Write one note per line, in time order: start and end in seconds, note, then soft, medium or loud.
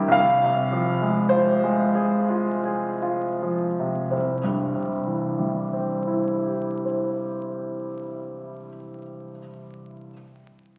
0.00 0.15 G2 soft
0.00 0.17 G3 soft
0.00 0.18 E4 soft
0.00 0.18 G4 soft
0.00 0.17 A#4 soft
0.00 0.13 G5 medium
0.00 0.17 A5 medium
0.08 4.07 C2 soft
0.08 1.31 F5 medium
0.44 0.91 C3 soft
0.72 1.20 F3 soft
1.02 1.51 G#3 soft
1.29 1.82 F4 soft
1.29 3.41 C5 medium
1.64 2.16 G#3 soft
1.95 2.50 G#4 soft
2.30 2.87 F4 soft
2.65 3.26 G#4 soft
3.02 3.66 F4 soft
3.42 4.01 F3 soft
3.80 4.14 C3 soft
4.11 8.69 C2 soft
4.11 6.83 C5 soft
4.44 9.00 G2 soft
4.75 9.32 C3 soft
5.06 9.40 E3 soft
5.39 9.40 G3 soft
5.73 9.39 C4 soft
6.07 9.39 E4 soft
6.45 9.39 G4 soft
6.85 9.39 C5 soft